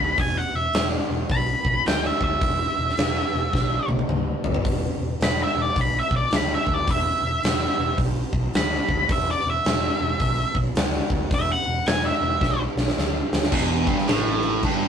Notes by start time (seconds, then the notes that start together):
Already playing: D2 B5
0.18 E1 G#5, kick, open hi-hat
0.37 F#5
0.53 E1 E5
0.73 E1, snare, open hi-hat
1.09 E1
1.29 B1 B5, kick, open hi-hat
1.65 B1, kick
1.86 D2 G5, snare, open hi-hat
2.06 E5
2.20 D2 E5, kick
2.41 E1, kick, open hi-hat
2.77 E1
2.89 snare
2.97 E1, snare, open hi-hat
3.33 E1
3.53 B1, kick, snare
3.88 B1, high tom
3.99 high tom
4.08 D2, mid tom
4.43 D2, floor tom
4.54 floor tom
4.65 E1, kick, open hi-hat
4.99 E1
5.20 E1 B5, snare, open hi-hat
5.43 E5
5.54 E1
5.62 D5
5.76 B1, kick, open hi-hat
5.81 B5
5.99 E5
6.11 B1, kick
6.16 D5
6.31 D2, snare, open hi-hat
6.36 B5
6.55 E5
6.66 D2, kick
6.74 D5
6.88 E1 E5, kick, open hi-hat
7.21 E1
7.42 E1, snare, open hi-hat
7.77 E1
7.98 B1, kick, open hi-hat
8.33 B1, kick
8.54 D2 B5, snare, open hi-hat
8.89 D2, kick
9.09 E1 E5, kick, open hi-hat
9.31 D5
9.43 E1
9.50 E5
9.65 E1, snare, open hi-hat
10.00 E1
10.20 B1, kick, open hi-hat
10.54 B1, kick
10.75 D2, snare, open hi-hat
11.10 D2, kick
11.31 E1 E5, kick, open hi-hat
11.51 F#5
11.66 E1
11.86 E1 G#5, snare, open hi-hat
12.06 E5
12.21 E1
12.41 B1, kick, snare
12.76 B1, snare
12.88 snare
12.97 D2, snare
13.32 D2, snare
13.43 snare
13.52 E1 E2, kick, crash
13.87 G1 G2, kick, crash
13.99 snare
14.08 A1 A2, snare, crash
14.43 crash
14.63 G1 G2, kick, crash